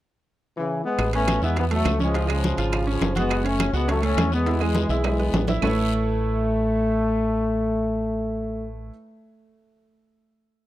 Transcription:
0.56 C#3 E3
0.85 G#3 B3
0.98 A1, high bongo, high conga, high timbale, long guiro, claves
1.13 A3 B3 C#4 B4, high conga, high timbale
1.27 high bongo, high conga, high timbale, low timbale, short guiro, claves
1.41 E2 G#3 B3 E4 E5, high conga, short guiro
1.56 E3 B3 B4, high bongo, high conga, high timbale, long guiro
1.71 F#3 A3 A4, high conga, high timbale
1.85 C#2, high bongo, low bongo, high conga, high timbale, low timbale, short guiro, claves
2.00 F3 G#3 C#4 C#5, high conga, short guiro
2.14 F3 F4, high bongo, high conga, high timbale, long guiro
2.28 C#3 F3 G#3 G#4, high bongo, high conga, high timbale, claves
2.44 high bongo, high conga, low timbale, short guiro
2.57 G#1 F4 F5, high timbale, short guiro
2.72 high bongo, high conga, high timbale, long guiro, claves
2.87 C#3 F3 C#4 C#5, high bongo, high conga
3.01 F#1, high bongo, low bongo, high conga, high timbale, low timbale, short guiro
3.15 G#3 B3 F#4 F#5, high bongo, high conga, high timbale, short guiro
3.29 high bongo, high conga, high timbale, long guiro, claves
3.44 A3 C#4 C#5, high conga, high timbale
3.59 high bongo, high conga, high timbale, low timbale, short guiro, claves
3.73 C#2 G#3 B3 F#4 F#5, high conga, short guiro
3.88 F#3 A3 C#4 C#5, high bongo, high conga, high timbale, long guiro
4.02 A3 C#4 A4, high conga, high timbale
4.17 E2, high bongo, low bongo, high conga, high timbale, low timbale, short guiro, claves
4.32 G#3 B3 B4, short guiro
4.46 E3 E4, high bongo, high conga, high timbale, long guiro
4.60 E3 G#3 G#4, high bongo, high conga, high timbale, claves
4.75 high bongo, high conga, low timbale, short guiro
4.89 B1 E4 E5, high timbale, short guiro
5.04 E3 G#3, high bongo, high conga, low timbale, long guiro, claves
5.19 B3 B4, high bongo, high conga, low timbale
5.33 A1, high bongo, low bongo, high conga, low timbale, short guiro
5.47 E4 E5, high bongo, high conga, low timbale, short guiro
5.61 A1 A3 E4 A4 B4 C#5 E5, low bongo, low conga, low timbale, long guiro, claves

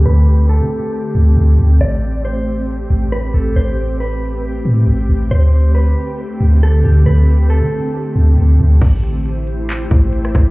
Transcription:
Already playing: D3 A3 C4 G4
0.06 D2 B4
0.49 A4
0.60 D3
1.15 D2
1.37 D2
1.59 D2
1.81 A1 G4 D5
2.25 C5
2.90 A1
3.12 B4
3.34 A1 A4
3.56 A1 C5
4.00 B4
4.65 A2
4.87 A1
5.09 A1
5.31 D2 D3 A3 C4 C5
5.75 B4
6.41 D2
6.63 A4
6.84 D2 G4
7.06 D2 B4
7.50 A4
7.61 D3
8.16 D2
8.38 D2
8.60 D2
8.81 A1 A3 E4 G4 C5, kick, closed hi-hat, crash
9.04 closed hi-hat
9.26 closed hi-hat
9.47 closed hi-hat
9.69 clap, closed hi-hat
9.91 A1, kick, closed hi-hat
10.13 closed hi-hat
10.25 cross-stick
10.35 A1, kick, cross-stick, closed hi-hat

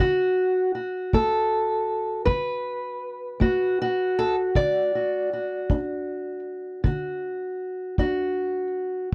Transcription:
0.00 D3 F#4, kick
0.75 F#4
1.13 A3 A4, kick
2.25 D3 B4, kick
3.40 A3 F#4, kick
3.82 F#4
4.19 A4
4.55 D3 D5, kick
4.95 F#4
5.33 F#4
5.70 D4, kick
6.84 D3 F#4, kick
7.98 D4 F#4, kick

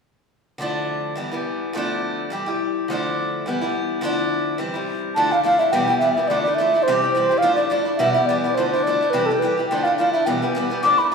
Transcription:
0.58 D3 F3 A3 D4
0.62 E4
1.15 E3 G3 B3 E4
1.32 E3 G3 B3 E4
1.73 D3 F3 A3 D4
1.77 E4
2.30 E3 G3 E4 G4
2.46 G3 E4 G4
2.88 D3 F3 A3 D4
2.92 E4
3.46 E3 G3 B3 E4
3.61 E3 G3 B3 E4
4.01 D3 F3 A3 D4 E4
4.58 E3 G3 C4 E4
4.74 G3 C4 E4
5.16 D3 F3 A3 D4 E4 A5
5.31 A3 D4 E4 F5
5.43 F3 A3 D4 E4 F5
5.59 A3 D4 E4 E5
5.72 E2 B2 E3 G3 B3 E4 G5
5.85 E4 G5
5.89 E3 G3 B3
5.98 E3 G3 E5
6.03 B3 E4
6.13 B3 E4 E5
6.18 E3 G3
6.28 D3 F3 A3 D4 E4 D5
6.42 E4 D5
6.46 A3 D4
6.55 F3 E5
6.60 A3 D4 E4
6.74 A3 D4 E4
6.83 C5
6.88 C3 E3 G3 E4 G4
6.97 C5
7.02 G3 E4 G4
7.11 C5
7.15 E3 G3 E4 G4
7.29 G3 E4 G4
7.38 F5
7.42 D3 F3 A3 D4 E4
7.56 A3 D4 E4 D5
7.67 F3 D5
7.71 A3 D4 E4
7.83 D4 E4 D5
7.88 A3
7.97 E2 B2 E3 G3 B3 E4 E5
8.12 G3 B3 E4 E5
8.17 E3
8.26 E3 D5
8.30 G3 B3 E4
8.42 B3 E4 D5
8.46 E3 G3
8.55 D3 F3 A3 D4 C5
8.60 E4
8.69 E4 C5
8.75 A3 D4
8.83 F3 D5
8.87 A3 D4 E4
9.01 A3 D4 E4
9.10 C3 E3 G3 B4
9.14 E4 G4
9.26 G4 A4
9.30 G3 E4
9.39 E3 B4
9.43 G3 E4 G4
9.57 G3 E4 G4
9.68 D3 F3 A3 D4 G5
9.73 E4
9.84 D4 E4 F5
9.88 A3
9.97 F3 A3 D4 F5
10.01 E4
10.13 A3 D4 E4 E5
10.26 E2 B2 E3 G3 B3 E4 G5
10.42 E3 G3 B3 E4
10.55 E3 G3 B3 E4
10.70 E3 G3 B3 E4
10.83 D3 F3 A3 D4 E4 D6
10.98 A3 D4 E4 B5
11.11 F3 A3 B5

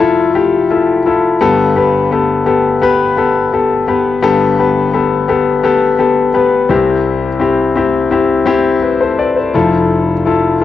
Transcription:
Already playing: F1 F2
0.00 E4 F4 A4
0.34 E4 F4 G4
0.70 E4 F4 A4
1.06 E4 F4 A4
1.41 G1 G2 B3 G4 A4
1.76 B3 G4 B4
2.11 B3 G4 A4
2.46 B3 G4 A4
2.82 B3 G4 B4
3.17 B3 G4 A4
3.53 B3 G4 A4
3.88 B3 G4 B4
4.22 G1 G2 B3 G4 A4
4.58 B3 G4 B4
4.93 B3 G4 A4
5.28 B3 G4 A4
5.63 B3 G4 A4
5.99 B3 G4 A4
6.34 B3 G4 B4
6.69 C2 C3 C4 E4 G4
7.40 C4 E4 G4
7.76 C4 E4 G4
8.11 C4 E4 G4
8.46 C4 E4 G4
8.82 G4 B4
9.01 A4 C5
9.19 B4 D5
9.36 A4 C5
9.54 F1 F2 E4 F4 A4
10.25 E4 F4 A4
10.60 E4 F4

